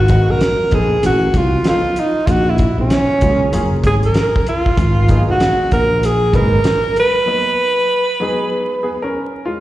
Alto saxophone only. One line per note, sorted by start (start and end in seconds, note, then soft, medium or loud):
0.00 0.32 F#4 medium
0.31 0.76 A#4 medium
0.75 1.04 G#4 medium
1.06 1.39 F#4 medium
1.37 1.67 F4 medium
1.69 2.01 F4 medium
2.00 2.28 D#4 medium
2.27 2.32 F4 medium
2.27 2.51 F#4 loud
2.50 2.80 E4 medium
2.81 3.55 C#4 medium
3.86 3.95 G#4 loud
4.05 4.45 A#4 loud
4.49 5.25 F4 loud
5.31 5.70 F#4 medium
5.73 6.07 A#4 loud
6.05 6.37 G#4 loud
6.36 6.97 A#4 loud
7.00 9.13 B4 loud